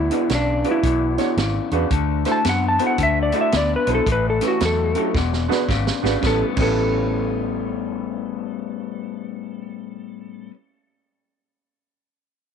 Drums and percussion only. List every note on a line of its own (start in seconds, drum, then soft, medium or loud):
0.11 closed hi-hat medium
0.29 snare loud
0.29 closed hi-hat medium
0.64 closed hi-hat medium
0.83 kick loud
0.83 closed hi-hat medium
1.18 snare soft
1.18 closed hi-hat medium
1.37 snare loud
1.37 closed hi-hat medium
1.71 closed hi-hat medium
1.91 kick loud
1.91 closed hi-hat medium
2.25 snare soft
2.25 closed hi-hat medium
2.44 snare loud
2.44 closed hi-hat medium
2.79 closed hi-hat medium
2.98 kick loud
2.98 closed hi-hat medium
3.32 closed hi-hat medium
3.52 snare loud
3.52 closed hi-hat medium
3.87 closed hi-hat medium
4.07 kick loud
4.07 closed hi-hat medium
4.41 snare soft
4.41 closed hi-hat medium
4.60 snare loud
4.60 closed hi-hat medium
4.95 closed hi-hat medium
5.15 kick loud
5.15 snare medium
5.33 snare medium
5.51 snare medium
5.69 kick medium
5.69 snare medium
5.87 snare medium
6.05 snare medium
6.23 kick loud
6.23 snare medium
6.57 kick loud
6.57 crash medium